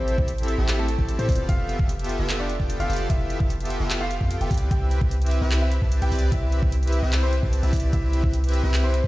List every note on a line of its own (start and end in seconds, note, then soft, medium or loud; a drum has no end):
0.00 0.16 A1 loud
0.00 0.13 C4 medium
0.00 0.16 C4 medium
0.00 0.16 E4 medium
0.00 0.16 G4 medium
0.00 0.16 A4 medium
0.00 0.13 C5 loud
0.00 0.16 E5 medium
0.08 closed hi-hat medium
0.18 0.56 A1 loud
0.18 0.56 C4 loud
0.18 0.56 E4 loud
0.18 0.56 G4 loud
0.18 0.56 A4 medium
0.18 0.56 E5 loud
0.18 kick loud
0.28 closed hi-hat medium
0.38 closed hi-hat medium
0.43 closed hi-hat medium
0.48 closed hi-hat medium
0.58 0.97 A1 loud
0.58 0.86 C4 medium
0.58 0.86 E4 medium
0.58 0.86 G4 medium
0.58 0.86 A4 medium
0.58 0.86 E5 loud
0.68 clap loud
0.68 closed hi-hat medium
0.79 1.12 A3 medium
0.79 1.12 A4 medium
0.88 closed hi-hat medium
0.98 1.17 A1 loud
0.98 1.16 C4 loud
0.98 1.16 E4 medium
0.98 1.16 G4 medium
0.98 1.16 A4 medium
0.98 1.16 A5 loud
0.98 kick medium
1.09 closed hi-hat medium
1.19 1.30 A2 loud
1.19 1.26 C4 medium
1.19 1.44 C4 medium
1.19 1.26 E4 medium
1.19 1.26 G4 medium
1.19 1.26 A4 medium
1.19 1.44 C5 loud
1.19 1.26 E5 loud
1.19 closed hi-hat medium
1.28 1.47 F1 loud
1.28 1.46 B3 loud
1.28 1.46 F4 medium
1.28 1.46 D5 loud
1.28 kick loud
1.28 closed hi-hat medium
1.28 open hi-hat loud
1.35 closed hi-hat medium
1.49 1.77 F1 loud
1.49 1.77 B3 medium
1.49 1.77 F4 medium
1.49 1.74 F4 medium
1.49 1.77 G4 medium
1.49 1.77 A4 medium
1.49 1.77 E5 loud
1.49 1.74 F5 loud
1.49 kick loud
1.49 closed hi-hat medium
1.69 closed hi-hat medium
1.79 2.17 F1 loud
1.79 2.17 F4 loud
1.79 2.17 E5 loud
1.79 kick loud
1.89 closed hi-hat medium
1.99 closed hi-hat medium
2.04 closed hi-hat medium
2.09 closed hi-hat medium
2.19 2.58 F1 loud
2.19 2.47 B3 medium
2.19 2.47 F4 medium
2.19 2.47 G4 medium
2.19 2.47 A4 medium
2.19 2.47 E5 loud
2.29 clap loud
2.29 closed hi-hat medium
2.40 2.73 D4 medium
2.40 2.73 D5 medium
2.49 closed hi-hat medium
2.60 2.78 F1 loud
2.60 2.77 B3 loud
2.60 2.77 F4 medium
2.60 2.77 G4 medium
2.60 2.77 A4 medium
2.60 2.77 G5 loud
2.60 kick medium
2.70 closed hi-hat medium
2.80 2.88 F1 loud
2.80 2.87 B3 medium
2.80 2.87 F4 medium
2.80 3.05 F4 medium
2.80 2.87 G4 medium
2.80 2.87 A4 medium
2.80 2.87 E5 loud
2.80 3.05 F5 loud
2.80 closed hi-hat medium
2.89 3.08 F1 loud
2.89 3.07 B3 loud
2.89 3.07 F4 medium
2.89 3.07 G4 medium
2.89 3.07 A4 medium
2.89 3.07 D5 loud
2.89 closed hi-hat medium
2.89 open hi-hat medium
2.96 closed hi-hat medium
3.10 3.38 F1 loud
3.10 3.38 B3 medium
3.10 3.35 E4 medium
3.10 3.38 F4 medium
3.10 3.38 G4 medium
3.10 3.35 E5 loud
3.10 kick loud
3.10 closed hi-hat medium
3.30 closed hi-hat medium
3.40 3.78 F1 loud
3.40 3.78 B3 loud
3.40 3.78 F4 loud
3.40 3.78 G4 loud
3.40 3.78 A4 loud
3.40 3.78 E5 loud
3.40 kick loud
3.50 closed hi-hat medium
3.60 closed hi-hat soft
3.65 closed hi-hat medium
3.70 closed hi-hat medium
3.80 4.19 F1 loud
3.80 4.08 B3 medium
3.80 4.08 F4 medium
3.80 4.08 G4 medium
3.80 4.08 A4 medium
3.80 4.08 E5 loud
3.90 clap loud
3.90 closed hi-hat medium
4.01 4.34 F4 medium
4.01 4.34 F5 loud
4.11 closed hi-hat medium
4.21 4.39 F2 loud
4.21 4.39 B3 loud
4.21 4.38 F4 medium
4.21 4.38 G4 medium
4.21 4.39 A4 medium
4.21 4.38 G5 loud
4.21 kick medium
4.31 closed hi-hat medium
4.41 4.49 F1 loud
4.41 4.48 B3 medium
4.41 4.48 F4 medium
4.41 4.48 G4 medium
4.41 4.66 G4 medium
4.41 4.48 A4 medium
4.41 4.48 E5 loud
4.41 4.66 G5 medium
4.41 closed hi-hat medium
4.51 4.69 C2 loud
4.51 kick loud
4.51 closed hi-hat medium
4.51 open hi-hat medium
4.58 closed hi-hat medium
4.71 4.99 C2 loud
4.71 4.99 C4 medium
4.71 4.99 E4 medium
4.71 4.99 G4 medium
4.71 4.96 G4 medium
4.71 4.99 B4 medium
4.71 4.99 E5 loud
4.71 4.96 G5 loud
4.71 kick loud
4.71 closed hi-hat medium
4.91 closed hi-hat medium
5.01 5.40 C2 loud
5.01 5.39 C4 loud
5.01 5.39 E4 medium
5.01 5.39 G4 loud
5.01 5.39 B4 loud
5.01 5.39 E5 loud
5.01 kick loud
5.11 closed hi-hat medium
5.22 closed hi-hat soft
5.26 closed hi-hat medium
5.31 closed hi-hat medium
5.42 5.80 C2 loud
5.42 5.69 C4 medium
5.42 5.69 E4 medium
5.42 5.69 G4 medium
5.42 5.69 B4 medium
5.42 5.69 E5 loud
5.51 clap loud
5.51 closed hi-hat medium
5.62 5.95 E4 medium
5.62 5.95 E5 medium
5.72 closed hi-hat medium
5.82 6.00 C2 loud
5.82 6.00 C4 loud
5.82 6.00 E4 medium
5.82 6.00 G4 medium
5.82 6.00 B4 medium
5.82 6.00 A5 loud
5.82 kick medium
5.92 closed hi-hat medium
6.02 6.10 C2 loud
6.02 6.09 C4 medium
6.02 6.09 E4 medium
6.02 6.09 G4 medium
6.02 6.27 G4 medium
6.02 6.09 B4 medium
6.02 6.09 E5 loud
6.02 6.27 G5 loud
6.02 closed hi-hat medium
6.12 6.30 C2 loud
6.12 6.30 C4 loud
6.12 6.30 E4 medium
6.12 6.30 G4 medium
6.12 6.30 B4 medium
6.12 6.30 D5 loud
6.12 closed hi-hat medium
6.12 open hi-hat medium
6.19 closed hi-hat medium
6.32 6.60 C2 loud
6.32 6.60 C4 medium
6.32 6.60 E4 medium
6.32 6.57 E4 medium
6.32 6.60 G4 medium
6.32 6.57 E5 loud
6.32 6.60 E5 medium
6.32 kick loud
6.32 closed hi-hat medium
6.52 closed hi-hat medium
6.62 7.01 C2 medium
6.62 kick loud
6.72 closed hi-hat medium
6.83 closed hi-hat soft
6.87 closed hi-hat medium
6.92 closed hi-hat medium
7.03 7.41 C2 loud
7.03 7.30 C4 medium
7.03 7.30 E4 medium
7.03 7.30 G4 medium
7.03 7.30 B4 medium
7.03 7.30 E5 loud
7.13 clap loud
7.13 closed hi-hat medium
7.23 7.56 C4 medium
7.23 7.56 C5 loud
7.33 closed hi-hat medium
7.43 7.61 C2 loud
7.43 7.61 C4 loud
7.43 7.61 E4 medium
7.43 7.61 G4 medium
7.43 7.61 B4 medium
7.43 7.61 A5 loud
7.43 kick medium
7.53 closed hi-hat medium
7.63 7.71 C2 loud
7.63 7.71 C4 medium
7.63 7.71 E4 medium
7.63 7.88 E4 medium
7.63 7.71 G4 medium
7.63 7.71 B4 medium
7.63 7.71 E5 loud
7.63 7.88 E5 medium
7.63 closed hi-hat medium
7.73 7.91 C2 loud
7.73 7.91 C4 loud
7.73 7.91 E4 medium
7.73 7.91 G4 medium
7.73 7.91 B4 medium
7.73 7.91 D5 loud
7.73 kick loud
7.73 closed hi-hat medium
7.73 open hi-hat loud
7.80 closed hi-hat medium
7.93 8.21 C2 loud
7.93 8.21 C4 medium
7.93 8.21 E4 medium
7.93 8.18 E4 medium
7.93 8.21 G4 medium
7.93 8.21 B4 medium
7.93 8.21 E5 medium
7.93 8.18 E5 loud
7.93 kick loud
7.93 closed hi-hat medium
8.13 closed hi-hat medium
8.23 8.62 C2 loud
8.23 8.61 C4 loud
8.23 8.61 E4 loud
8.23 8.61 G4 medium
8.23 8.61 B4 loud
8.23 8.61 E5 loud
8.23 kick loud
8.34 closed hi-hat medium
8.44 closed hi-hat soft
8.49 closed hi-hat medium
8.54 closed hi-hat medium
8.64 9.02 C2 loud
8.64 8.91 C4 medium
8.64 8.91 E4 medium
8.64 8.91 G4 medium
8.64 8.91 B4 medium
8.64 8.91 E5 loud
8.74 clap loud
8.74 closed hi-hat medium
8.84 9.07 C4 medium
8.84 9.07 C5 loud
8.94 closed hi-hat medium
9.04 9.07 C2 loud
9.04 9.07 C4 medium
9.04 9.07 E4 medium
9.04 9.07 G4 medium
9.04 9.07 B4 medium
9.04 9.07 A5 loud
9.04 kick medium